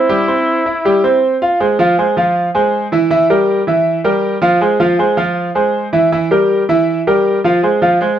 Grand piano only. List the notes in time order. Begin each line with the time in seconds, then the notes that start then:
0.09 G3 G4
0.28 C4 C5
0.66 E4 E5
0.85 G3 G4
1.04 C4 C5
1.42 F4 F5
1.60 G#3 G#4 C5
1.79 F3 F4 F5
1.98 G#3 G#4 C5
2.17 F3 F4 F5
2.55 G#3 G#4 C5
2.92 E3 E4 E5
3.10 E3 E4 E5
3.30 G3 G4 A#4
3.67 E3 E4 E5
4.04 G3 G4 A#4
4.42 F3 F4 F5
4.61 G#3 G#4 C5
4.80 F3 F4 F5
4.99 G#3 G#4 C5
5.17 F3 F4 F5
5.55 G#3 G#4 C5
5.93 E3 E4 E5
6.12 E3 E4 E5
6.31 G3 G4 A#4
6.69 E3 E4 E5
7.07 G3 G4 A#4
7.44 F3 F4 F5
7.63 G#3 G#4 C5
7.82 F3 F4 F5
8.01 G#3 G#4 C5